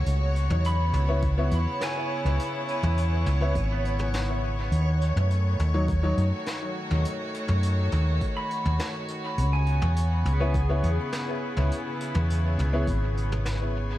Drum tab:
HH |x-x-x-x-x-x-x---|x-x-x-x-x-x-x---|x-x-x-x-x-x-x---|x-x-x-x-x-x-x-x-|
SD |------------o---|------------o---|------------o---|------------o---|
T2 |---o--o--------o|---o--o----o----|---o--o--------o|---o--o----o----|
BD |--------o-------|--------o-------|--------o-------|--------o-------|

HH |x-x-x-x-x-x-x---|x-x-x-x-x-x-x---|
SD |------------o---|------------o---|
T2 |---o--o--------o|---o--o----o----|
BD |--------o-------|--------o-------|